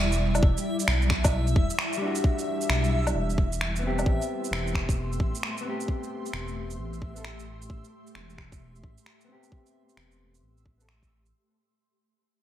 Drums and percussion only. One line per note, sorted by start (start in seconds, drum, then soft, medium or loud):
0.12 shaker soft
0.35 low woodblock soft
0.35 shaker medium
0.43 kick loud
0.57 shaker soft
0.80 shaker medium
0.88 finger snap loud
1.02 shaker soft
1.10 finger snap medium
1.10 kick medium
1.24 kick loud
1.24 low woodblock medium
1.24 shaker medium
1.47 shaker soft
1.56 kick loud
1.70 shaker medium
1.79 finger snap loud
1.93 shaker soft
2.15 shaker medium
2.24 kick loud
2.39 shaker soft
2.61 shaker soft
2.70 finger snap loud
2.84 shaker soft
3.07 low woodblock medium
3.07 shaker medium
3.30 shaker soft
3.38 kick loud
3.53 shaker medium
3.61 finger snap loud
3.76 shaker soft
3.99 low woodblock soft
3.99 shaker medium
4.06 kick loud
4.22 shaker soft
4.44 shaker soft
4.53 finger snap loud
4.67 shaker soft
4.75 finger snap medium
4.75 kick medium
4.89 kick medium
4.89 shaker medium
5.13 shaker soft
5.20 kick loud
5.35 shaker medium
5.43 finger snap medium
5.58 shaker soft
5.81 shaker soft
5.88 kick loud
6.03 shaker soft
6.26 shaker soft
6.33 finger snap medium
6.48 shaker soft
6.71 shaker soft
6.93 shaker soft
7.02 kick medium
7.16 shaker soft
7.25 finger snap medium
7.39 shaker soft
7.62 shaker soft
7.70 kick loud
7.84 shaker soft
8.07 shaker medium
8.15 finger snap medium
8.30 shaker soft
8.38 finger snap medium
8.38 kick medium
8.52 kick medium
8.52 shaker soft
8.76 shaker soft
8.84 kick medium
8.98 shaker soft
9.06 finger snap medium
9.21 shaker soft
9.43 shaker soft
9.52 kick loud
9.66 shaker soft
9.89 shaker soft
9.97 finger snap medium
10.12 shaker soft
10.35 shaker medium
10.57 shaker soft
10.66 kick medium
10.80 shaker medium
10.89 finger snap medium
11.03 kick medium
11.03 shaker soft
11.26 shaker medium